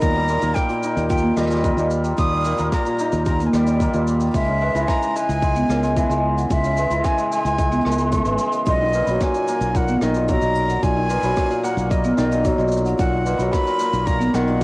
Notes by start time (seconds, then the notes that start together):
0.00 D#2 A#2 A#5, kick, closed hi-hat, shaker
0.15 G3
0.28 A#2 A#4, shaker
0.41 D#2 A#3 A#5, closed hi-hat, shaker
0.54 G5, kick, cross-stick, closed hi-hat, shaker
0.69 A#2, closed hi-hat, shaker
0.83 D#4, shaker
0.97 D#2, closed hi-hat, shaker
1.09 A#2 G5, kick, closed hi-hat, shaker
1.17 shaker
1.23 A#3
1.37 D#2 G3 A#4 D#5, cross-stick, shaker
1.42 cross-stick
1.46 cross-stick
1.50 A#2, cross-stick, closed hi-hat, shaker
1.55 cross-stick
1.59 cross-stick
1.64 A#3, kick, closed hi-hat, shaker
1.77 D#2 A#2 D#5, shaker
1.91 shaker
2.04 G5, closed hi-hat, shaker
2.18 D#2 A#2 D#6, kick, closed hi-hat, shaker
2.32 G3
2.45 A#2 A#4, shaker
2.57 D#2 A#3 A#5, closed hi-hat, shaker
2.72 A#5, kick, cross-stick, closed hi-hat, shaker
2.85 A#2, closed hi-hat, shaker
2.99 D#4, shaker
3.12 D#2, closed hi-hat, shaker
3.25 A#2 A#5, kick, closed hi-hat, shaker
3.40 A#3, closed hi-hat, shaker
3.47 G#5
3.53 D#2 G3 A#4 G5, cross-stick, shaker
3.67 A#2, closed hi-hat, shaker
3.80 A#3, kick, closed hi-hat, shaker
3.94 D#2 A#2 D#5, shaker
4.07 shaker
4.20 G5, closed hi-hat, shaker
4.27 closed hi-hat
4.31 C#2, kick, closed hi-hat
4.34 G#3 E5, closed hi-hat, shaker
4.40 closed hi-hat
4.45 C#3, closed hi-hat
4.61 G#3 B4
4.74 C#2 E3 B5, closed hi-hat, shaker
4.88 A#5, kick, cross-stick, closed hi-hat, shaker
5.02 G#3, closed hi-hat, shaker
5.16 G#3 G#5, shaker
5.29 C#2, closed hi-hat, shaker
5.42 G#3, kick, closed hi-hat, shaker
5.56 B3, closed hi-hat, shaker
5.69 C#2 C#3 A#4, cross-stick, shaker
5.83 G#3, closed hi-hat, shaker
5.96 E3, kick, closed hi-hat, shaker
6.10 C#2 G#3 D#5, shaker
6.37 F#5, closed hi-hat, shaker
6.50 C#2 G#3 E5, kick, closed hi-hat, shaker
6.64 C#3, closed hi-hat, shaker
6.77 G#3 B4, shaker
6.90 C#2 E3 B5, closed hi-hat, shaker
7.04 G#5, kick, cross-stick, closed hi-hat, shaker
7.18 G#3, closed hi-hat, shaker
7.31 G#3 G#5, shaker
7.45 C#2, closed hi-hat, shaker
7.58 G#3, kick, closed hi-hat, shaker
7.72 B3, closed hi-hat, shaker
7.81 A#4, closed hi-hat
7.85 C#2 G#3, cross-stick
7.90 closed hi-hat, shaker
7.98 G#3 B5, closed hi-hat, shaker
8.12 G#3, kick, closed hi-hat, shaker
8.25 G#1 E3 B4, closed hi-hat, shaker
8.38 G#3, shaker
8.52 D#5, closed hi-hat, shaker
8.65 B1 A#2 D#5, kick, closed hi-hat, shaker
8.81 D#3
8.93 A#2 B4, shaker
9.06 B1 F#3 B5, closed hi-hat, shaker
9.21 G#5, kick, cross-stick, closed hi-hat, shaker
9.34 A#2, closed hi-hat, shaker
9.48 A#3, shaker
9.60 B1, closed hi-hat, shaker
9.75 A#2 F#5, kick, closed hi-hat, shaker
9.88 B3, shaker
10.01 B1 D#3 A#4 D#5, cross-stick, shaker
10.14 A#2, closed hi-hat, shaker
10.28 F#3 A#5, kick, closed hi-hat, shaker
10.41 B1 A#2 D#5, shaker
10.55 shaker
10.69 F#5, closed hi-hat, shaker
10.82 B1 A#2 G#5, kick, closed hi-hat, shaker
10.97 D#3
11.10 A#2 B4, shaker
11.23 B1 F#3 B5, closed hi-hat, shaker
11.25 closed hi-hat
11.27 closed hi-hat
11.30 closed hi-hat
11.32 closed hi-hat
11.34 kick, cross-stick, closed hi-hat, shaker
11.38 closed hi-hat
11.50 A#2, closed hi-hat, shaker
11.63 A#3 F#5, shaker
11.77 B1, closed hi-hat, shaker
11.90 A#2 D#5, kick, closed hi-hat, shaker
12.04 B3, shaker
12.17 B1 D#3 A#4 D#5, cross-stick, closed hi-hat, shaker
12.31 A#2, closed hi-hat, shaker
12.44 F#3, kick, closed hi-hat, shaker
12.58 B1 A#2 D#5, shaker
12.68 shaker
12.72 shaker
12.77 shaker
12.85 F#5, closed hi-hat, shaker
12.98 B1 A#2 F#5, kick, closed hi-hat, shaker
13.13 D#3
13.26 A#2 B4, shaker
13.38 B1 F#3 B5, closed hi-hat, shaker
13.52 B5, kick, cross-stick, closed hi-hat, shaker
13.67 A#2, closed hi-hat, shaker
13.79 A#3, shaker
13.93 B1, closed hi-hat, shaker
14.06 A#2 A#5, kick, closed hi-hat, shaker
14.19 B3, closed hi-hat, shaker
14.33 B1 D#3 A#4 F#5, cross-stick, shaker
14.48 A#2, closed hi-hat
14.61 closed hi-hat